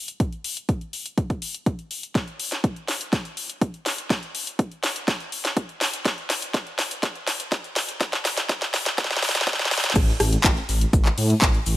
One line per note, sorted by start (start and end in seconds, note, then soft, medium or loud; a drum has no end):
0.08 closed hi-hat medium
0.20 kick loud
0.20 closed hi-hat soft
0.33 closed hi-hat soft
0.44 open hi-hat loud
0.57 closed hi-hat soft
0.69 kick loud
0.69 closed hi-hat soft
0.81 closed hi-hat soft
0.93 open hi-hat medium
1.06 closed hi-hat medium
1.18 kick loud
1.18 closed hi-hat soft
1.30 kick medium
1.30 closed hi-hat soft
1.42 open hi-hat loud
1.54 closed hi-hat soft
1.66 kick loud
1.66 closed hi-hat medium
1.79 closed hi-hat soft
1.91 open hi-hat medium
2.03 closed hi-hat soft
2.15 kick loud
2.15 snare soft
2.15 closed hi-hat soft
2.28 closed hi-hat soft
2.40 open hi-hat loud
2.52 snare soft
2.52 closed hi-hat soft
2.64 kick loud
2.64 closed hi-hat soft
2.76 closed hi-hat soft
2.88 snare medium
2.88 open hi-hat medium
3.01 closed hi-hat medium
3.13 kick loud
3.13 snare medium
3.13 closed hi-hat soft
3.25 closed hi-hat soft
3.37 open hi-hat loud
3.50 closed hi-hat soft
3.61 kick loud
3.61 closed hi-hat medium
3.74 closed hi-hat soft
3.86 snare medium
3.86 open hi-hat medium
3.98 closed hi-hat medium
4.10 kick loud
4.10 snare medium
4.10 closed hi-hat medium
4.23 closed hi-hat soft
4.35 open hi-hat loud
4.47 closed hi-hat medium
4.59 kick loud
4.59 closed hi-hat medium
4.72 closed hi-hat soft
4.83 snare medium
4.83 open hi-hat medium
4.96 closed hi-hat medium
5.08 kick loud
5.08 snare medium
5.08 closed hi-hat medium
5.20 closed hi-hat soft
5.32 open hi-hat loud
5.45 snare medium
5.45 closed hi-hat medium
5.57 kick loud
5.57 closed hi-hat medium
5.69 closed hi-hat soft
5.81 snare medium
5.81 open hi-hat medium
5.93 closed hi-hat medium
6.05 kick loud
6.05 snare medium
6.05 closed hi-hat medium
6.18 closed hi-hat soft
6.30 snare medium
6.30 open hi-hat loud
6.42 closed hi-hat medium
6.54 kick loud
6.54 snare medium
6.54 closed hi-hat medium
6.67 closed hi-hat soft
6.79 snare medium
6.79 open hi-hat medium
6.91 closed hi-hat medium
7.03 kick loud
7.03 snare medium
7.03 closed hi-hat medium
7.16 closed hi-hat soft
7.27 snare medium
7.27 open hi-hat loud
7.40 closed hi-hat medium
7.52 kick loud
7.52 snare medium
7.52 closed hi-hat medium
7.64 closed hi-hat soft
7.76 snare medium
7.76 open hi-hat medium
7.89 closed hi-hat medium
8.01 kick loud
8.01 snare medium
8.01 closed hi-hat medium
8.13 snare medium
8.13 closed hi-hat soft
8.25 snare loud
8.25 open hi-hat loud
8.37 snare medium
8.37 closed hi-hat medium
8.49 kick loud
8.49 snare loud
8.49 closed hi-hat medium
8.62 snare medium
8.62 closed hi-hat soft
8.74 snare loud
8.74 open hi-hat medium
8.86 snare medium
8.86 closed hi-hat medium
8.98 kick loud
8.98 snare loud
8.98 closed hi-hat medium
9.04 snare medium
9.11 snare medium
9.11 closed hi-hat soft
9.17 snare medium
9.22 snare loud
9.22 open hi-hat loud
9.29 snare medium
9.35 snare medium
9.35 closed hi-hat medium
9.41 snare medium
9.47 kick loud
9.47 snare loud
9.47 closed hi-hat medium
9.53 snare loud
9.59 snare medium
9.59 closed hi-hat soft
9.65 snare loud
9.71 snare loud
9.71 open hi-hat medium
9.78 snare loud
9.84 snare loud
9.84 closed hi-hat medium
9.90 snare loud
9.95 10.12 A1 loud
9.95 kick loud
9.95 cross-stick medium
9.95 closed hi-hat medium
9.95 ride medium
9.95 crash loud
9.95 shaker medium
10.08 snare soft
10.08 closed hi-hat soft
10.20 10.36 A1 medium
10.20 cross-stick medium
10.20 snare soft
10.20 open hi-hat loud
10.20 ride medium
10.20 shaker medium
10.32 closed hi-hat soft
10.32 closed hi-hat medium
10.44 10.61 A1 medium
10.44 kick loud
10.44 snare loud
10.44 clap loud
10.44 closed hi-hat medium
10.44 ride medium
10.44 shaker medium
10.56 snare soft
10.56 closed hi-hat soft
10.69 10.85 A1 loud
10.69 snare soft
10.69 open hi-hat medium
10.69 ride medium
10.69 shaker medium
10.81 closed hi-hat medium
10.93 11.10 A1 medium
10.93 kick loud
10.93 closed hi-hat medium
10.93 ride medium
10.93 shaker medium
11.05 clap soft
11.05 closed hi-hat soft
11.18 11.34 A2 medium
11.18 open hi-hat loud
11.18 open hi-hat medium
11.18 ride medium
11.30 closed hi-hat medium
11.42 11.58 A1 medium
11.42 kick loud
11.42 snare loud
11.42 clap loud
11.42 closed hi-hat medium
11.42 ride medium
11.42 shaker medium
11.55 closed hi-hat soft
11.66 11.77 A1 loud
11.66 open hi-hat medium
11.66 ride medium
11.66 shaker medium